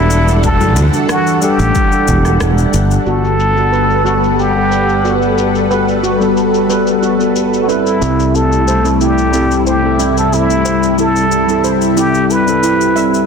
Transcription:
Already playing: fretless electric bass E1, analog synth pad E3 G3 D4 A4 F#5, tine electric piano G3 D4 F#4 A4, muted trumpet E4
0.11 cabasa
0.28 cabasa
0.43 tine electric piano G3 D4 F#4 A4, muted trumpet A4, kick, cabasa
0.61 high conga, cabasa
0.76 fretless electric bass D2, low conga, cabasa
0.93 tine electric piano G3 D4 F#4 A4, cabasa
1.09 muted trumpet F#4, cross-stick, cabasa
1.27 cabasa
1.41 tine electric piano G3 D4 A4 F#5, muted trumpet G4, cabasa
1.59 fretless electric bass A1, high conga, cabasa
1.75 kick, cabasa
1.91 tine electric piano G3 D4 A4 F#5, cabasa
2.08 fretless electric bass E1, kick, cabasa
2.25 cross-stick, cabasa
2.40 fretless electric bass E1, tine electric piano G3 D4 A4 F#5, cross-stick, high conga, cabasa
2.58 cabasa
2.74 fretless electric bass G1, cabasa
2.91 cabasa
3.05 fretless electric bass G1, tine electric piano G3 B3 F#4 A4, analog synth pad G3 A4 B4 F#5, steel pan F#4, muted trumpet A4, cabasa
3.24 cabasa
3.40 cabasa
3.56 tine electric piano G3 B3 F#4 A4, cabasa
3.72 steel pan B4, cabasa
3.90 cabasa
4.04 tine electric piano G3 B3 F#4 A4, steel pan F#4, cabasa
4.24 cabasa
4.39 muted trumpet G4, cabasa
4.55 tine electric piano G3 B3 A4 F#5
4.71 steel pan B4, cabasa
4.89 cabasa
5.04 tine electric piano G3 B3 A4 F#5, steel pan F#4, cabasa
5.22 cabasa
5.38 cabasa
5.55 cabasa
5.70 tine electric piano G3 B3 F#4 A4, steel pan B4, cabasa
5.88 cabasa
6.03 steel pan F#4, cabasa
6.20 tine electric piano G3 B3 F#4 A4, cabasa
6.37 cabasa
6.54 cabasa
6.68 tine electric piano G3 B3 F#4 A4, steel pan B4, cabasa
6.87 cabasa
7.02 steel pan F#4, cabasa
7.18 tine electric piano G3 B3 F#4 A4, cabasa
7.36 cabasa
7.54 cabasa
7.62 muted trumpet F#4
7.67 tine electric piano G3 C4 E4 A4, muted trumpet E4, steel pan B4, cabasa
7.86 cabasa
8.01 fretless electric bass C2, analog synth pad C3 G3 A3 E4, steel pan E4, cabasa
8.20 cabasa
8.33 tine electric piano G3 C4 E4 A4, muted trumpet A4, cabasa
8.52 cabasa
8.68 steel pan C5, cabasa
8.83 tine electric piano G3 C4 E4 A4, cabasa
9.01 steel pan E4, muted trumpet G4, cabasa
9.18 cabasa
9.32 tine electric piano G3 C4 E4 A4, cabasa
9.51 cabasa
9.67 muted trumpet G4, steel pan C5, cabasa
9.82 tine electric piano G3 C4 E4 A4
9.99 steel pan E4, cabasa
10.17 muted trumpet A4, cabasa
10.31 tine electric piano G3 C4 E4 A4, muted trumpet E4, cabasa
10.50 cabasa
10.65 steel pan C5, cabasa
10.83 cabasa
10.97 tine electric piano G3 C4 E4 A4, steel pan E4, muted trumpet A4, cabasa
11.16 cabasa
11.32 cabasa
11.47 tine electric piano G3 C4 E4 A4, cabasa
11.64 steel pan C5, cabasa
11.81 cabasa
11.96 tine electric piano G3 C4 E4 A4, steel pan E4, muted trumpet G4, cabasa
12.14 cabasa
12.30 muted trumpet B4, cabasa
12.46 tine electric piano G3 C4 E4 A4, cabasa
12.63 steel pan E4, cabasa
12.81 cabasa
12.95 tine electric piano G3 C4 E4 A4, steel pan E5, cabasa
13.14 cabasa

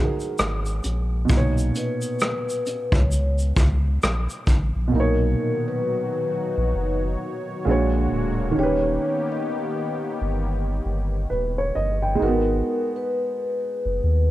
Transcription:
Already playing: upright piano G#3 D#4 F#4
0.00 upright piano G#4
0.05 upright piano A#4
0.20 shaker
0.39 sub bass G#1, cross-stick, shaker
0.66 shaker
0.84 sub bass A#1, closed hi-hat, shaker
1.25 upright piano B2
1.29 sub bass B1, upright piano A#2, kick, shaker
1.33 upright piano D#4 C#5
1.58 shaker
1.75 vibraphone B4, closed hi-hat, shaker
2.02 shaker
2.20 vibraphone B4, cross-stick, shaker
2.50 shaker
2.66 closed hi-hat, shaker
2.92 sub bass C#2, vibraphone C#5, kick
3.12 shaker
3.39 shaker
3.56 sub bass C#2, kick, closed hi-hat, shaker
4.03 sub bass A#1, cross-stick, shaker
4.29 shaker
4.47 sub bass A1, kick, closed hi-hat, shaker
4.76 sub bass A#1
4.88 upright piano B2
4.92 sub bass B1, upright piano A#2 D#4, analog synth pad D#3 F#3 D#4 F#4 C#5, vibraphone A#4
5.00 upright piano C#5
5.68 vibraphone B4
6.58 sub bass A#1
6.75 sub bass F#1
7.65 sub bass A#1, upright piano A#2 G#3 D4, analog synth pad D3 G#3 A#3 F#4
7.69 upright piano F#4 C#5
8.12 sub bass D1
8.51 upright piano D#3 C#4
8.57 sub bass D#1, analog synth pad D#3 B3 G4, upright piano G4, vibraphone C#5
8.63 upright piano B4
9.32 vibraphone D#5
10.21 sub bass G1
10.85 sub bass G1
11.30 sub bass D#1, upright piano B4
11.58 upright piano C#5
11.75 sub bass G1, upright piano D#5
12.02 upright piano G5
12.15 upright piano G#3
12.19 sub bass G#1, upright piano D#4 F#4, vibraphone A#4
12.27 upright piano B3
12.96 vibraphone B4
13.86 sub bass F#1
14.03 sub bass D#2

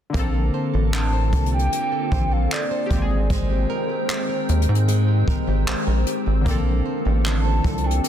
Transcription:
0.10 synth keys D3 A#3
0.14 analog synth bass A#1, ambient pad D3 A#3 C4 F4 A4, nylon-string guitar A#3, synth keys C4, kick, closed hi-hat
0.19 synth keys A4
0.34 nylon-string guitar A4
0.54 nylon-string guitar C5
0.74 analog synth bass A1, nylon-string guitar A4
0.93 nylon-string guitar D4, soft synth lead A5, clap, closed hi-hat
1.13 nylon-string guitar C5
1.33 analog synth bass C2, nylon-string guitar A4, kick, closed hi-hat
1.46 closed hi-hat
1.53 nylon-string guitar D4, soft synth lead G5
1.59 closed hi-hat
1.72 nylon-string guitar A#3, closed hi-hat
1.92 nylon-string guitar A4
2.12 analog synth bass A#1, nylon-string guitar C5, kick
2.32 nylon-string guitar A4, soft synth lead F5
2.51 nylon-string guitar D4, soft synth lead D5, clap, closed hi-hat
2.71 nylon-string guitar C5
2.86 synth keys A#3 G4
2.90 analog synth bass G#1, ambient pad D#3 G#3 A#4 G5, nylon-string guitar G#3, synth keys C4, kick, closed hi-hat
2.96 synth keys G4
3.02 synth keys G#4
3.11 nylon-string guitar C4
3.30 nylon-string guitar G#3, soft synth lead C5, kick, closed hi-hat
3.50 nylon-string guitar G4
3.70 nylon-string guitar A#4
3.89 nylon-string guitar G4
4.09 nylon-string guitar C4, clap, closed hi-hat
4.29 nylon-string guitar A#4
4.49 analog synth bass D#2, nylon-string guitar G4, ambient pad C5, closed hi-hat
4.62 closed hi-hat
4.68 analog synth bass G#2, nylon-string guitar C4
4.75 closed hi-hat
4.88 nylon-string guitar G#3, closed hi-hat
5.08 nylon-string guitar G4
5.28 analog synth bass G#1, nylon-string guitar A#4, kick
5.47 analog synth bass G#1, nylon-string guitar G4
5.67 analog synth bass A#1, nylon-string guitar C4, clap, closed hi-hat
5.87 analog synth bass A#1, nylon-string guitar A#4
6.07 nylon-string guitar G4, closed hi-hat
6.26 analog synth bass G#1, nylon-string guitar C4
6.41 synth keys D3 A#3
6.46 analog synth bass A#1, ambient pad D3 A#3 F4 A4, nylon-string guitar A#3, synth keys C4, kick, closed hi-hat
6.51 synth keys A4
6.66 nylon-string guitar A4
6.86 nylon-string guitar C5
7.05 analog synth bass A1, nylon-string guitar A4
7.25 nylon-string guitar D4, soft synth lead A5, clap, closed hi-hat
7.45 nylon-string guitar C5
7.64 analog synth bass C2, nylon-string guitar A4, kick, closed hi-hat
7.78 closed hi-hat
7.84 nylon-string guitar D4, soft synth lead G5
7.91 closed hi-hat
8.04 nylon-string guitar A#3, closed hi-hat

